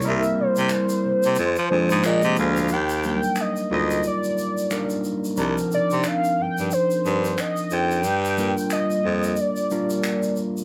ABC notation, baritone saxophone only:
X:1
M:4/4
L:1/16
Q:"Swing 16ths" 1/4=90
K:Eb
V:1 name="Baritone saxophone" clef=bass
C,, z C, C, z2 C, C, F,, F, F,, A,, B,, C, D,,2 | E,,3 z3 D,,2 z8 | C,, z C, C, z2 G,, G,, z2 G,,2 z2 F,,2 | G,,3 z3 F,,2 z8 |]